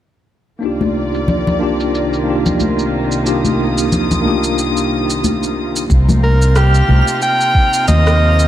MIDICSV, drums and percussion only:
0, 0, Header, 1, 2, 480
1, 0, Start_track
1, 0, Key_signature, -3, "minor"
1, 0, Tempo, 659341
1, 456, Time_signature, 4, 2, 24, 8
1, 6172, End_track
2, 0, Start_track
2, 0, Title_t, "Drums"
2, 453, Note_on_c, 9, 82, 45
2, 526, Note_off_c, 9, 82, 0
2, 589, Note_on_c, 9, 63, 79
2, 593, Note_on_c, 9, 82, 31
2, 662, Note_off_c, 9, 63, 0
2, 666, Note_off_c, 9, 82, 0
2, 834, Note_on_c, 9, 82, 63
2, 906, Note_off_c, 9, 82, 0
2, 932, Note_on_c, 9, 64, 77
2, 937, Note_on_c, 9, 82, 52
2, 1005, Note_off_c, 9, 64, 0
2, 1010, Note_off_c, 9, 82, 0
2, 1072, Note_on_c, 9, 64, 81
2, 1072, Note_on_c, 9, 82, 28
2, 1145, Note_off_c, 9, 64, 0
2, 1145, Note_off_c, 9, 82, 0
2, 1311, Note_on_c, 9, 82, 58
2, 1384, Note_off_c, 9, 82, 0
2, 1417, Note_on_c, 9, 82, 50
2, 1490, Note_off_c, 9, 82, 0
2, 1553, Note_on_c, 9, 82, 28
2, 1626, Note_off_c, 9, 82, 0
2, 1791, Note_on_c, 9, 64, 78
2, 1791, Note_on_c, 9, 82, 58
2, 1864, Note_off_c, 9, 64, 0
2, 1864, Note_off_c, 9, 82, 0
2, 1892, Note_on_c, 9, 82, 49
2, 1898, Note_on_c, 9, 63, 84
2, 1965, Note_off_c, 9, 82, 0
2, 1971, Note_off_c, 9, 63, 0
2, 2031, Note_on_c, 9, 82, 28
2, 2104, Note_off_c, 9, 82, 0
2, 2270, Note_on_c, 9, 82, 59
2, 2342, Note_off_c, 9, 82, 0
2, 2376, Note_on_c, 9, 82, 47
2, 2449, Note_off_c, 9, 82, 0
2, 2509, Note_on_c, 9, 63, 84
2, 2512, Note_on_c, 9, 82, 30
2, 2582, Note_off_c, 9, 63, 0
2, 2585, Note_off_c, 9, 82, 0
2, 2752, Note_on_c, 9, 82, 65
2, 2825, Note_off_c, 9, 82, 0
2, 2856, Note_on_c, 9, 64, 75
2, 2856, Note_on_c, 9, 82, 50
2, 2929, Note_off_c, 9, 64, 0
2, 2929, Note_off_c, 9, 82, 0
2, 2993, Note_on_c, 9, 82, 30
2, 2994, Note_on_c, 9, 64, 83
2, 3066, Note_off_c, 9, 82, 0
2, 3067, Note_off_c, 9, 64, 0
2, 3098, Note_on_c, 9, 63, 66
2, 3171, Note_off_c, 9, 63, 0
2, 3231, Note_on_c, 9, 82, 64
2, 3304, Note_off_c, 9, 82, 0
2, 3338, Note_on_c, 9, 82, 54
2, 3411, Note_off_c, 9, 82, 0
2, 3474, Note_on_c, 9, 82, 31
2, 3546, Note_off_c, 9, 82, 0
2, 3713, Note_on_c, 9, 82, 61
2, 3786, Note_off_c, 9, 82, 0
2, 3816, Note_on_c, 9, 82, 53
2, 3817, Note_on_c, 9, 63, 88
2, 3889, Note_off_c, 9, 63, 0
2, 3889, Note_off_c, 9, 82, 0
2, 3955, Note_on_c, 9, 82, 34
2, 4028, Note_off_c, 9, 82, 0
2, 4194, Note_on_c, 9, 82, 61
2, 4267, Note_off_c, 9, 82, 0
2, 4295, Note_on_c, 9, 36, 113
2, 4299, Note_on_c, 9, 82, 49
2, 4368, Note_off_c, 9, 36, 0
2, 4372, Note_off_c, 9, 82, 0
2, 4430, Note_on_c, 9, 64, 78
2, 4435, Note_on_c, 9, 82, 32
2, 4439, Note_on_c, 9, 63, 97
2, 4503, Note_off_c, 9, 64, 0
2, 4508, Note_off_c, 9, 82, 0
2, 4512, Note_off_c, 9, 63, 0
2, 4673, Note_on_c, 9, 82, 62
2, 4746, Note_off_c, 9, 82, 0
2, 4774, Note_on_c, 9, 37, 78
2, 4775, Note_on_c, 9, 82, 55
2, 4847, Note_off_c, 9, 37, 0
2, 4847, Note_off_c, 9, 82, 0
2, 4912, Note_on_c, 9, 82, 31
2, 4985, Note_off_c, 9, 82, 0
2, 5013, Note_on_c, 9, 63, 62
2, 5086, Note_off_c, 9, 63, 0
2, 5154, Note_on_c, 9, 82, 60
2, 5226, Note_off_c, 9, 82, 0
2, 5256, Note_on_c, 9, 82, 52
2, 5328, Note_off_c, 9, 82, 0
2, 5394, Note_on_c, 9, 82, 30
2, 5467, Note_off_c, 9, 82, 0
2, 5496, Note_on_c, 9, 36, 93
2, 5568, Note_off_c, 9, 36, 0
2, 5631, Note_on_c, 9, 82, 62
2, 5704, Note_off_c, 9, 82, 0
2, 5735, Note_on_c, 9, 82, 51
2, 5741, Note_on_c, 9, 63, 73
2, 5808, Note_off_c, 9, 82, 0
2, 5814, Note_off_c, 9, 63, 0
2, 5875, Note_on_c, 9, 37, 75
2, 5875, Note_on_c, 9, 82, 31
2, 5947, Note_off_c, 9, 37, 0
2, 5948, Note_off_c, 9, 82, 0
2, 6111, Note_on_c, 9, 82, 60
2, 6172, Note_off_c, 9, 82, 0
2, 6172, End_track
0, 0, End_of_file